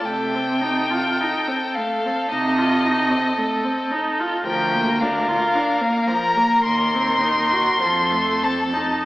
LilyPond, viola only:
\new Staff \with { instrumentName = "Viola" } { \time 4/4 \key f \mixolydian \tempo 4 = 54 a16 c'16 ees'16 f'16 ees'16 c'16 a16 c'16 ees'16 f'16 ees'16 c'16 a16 c'16 ees'16 f'16 | f16 bes16 d'16 f'16 d'16 bes16 f16 bes16 bes16 c'16 ees'16 ges'16 f16 a16 c'16 ees'16 | }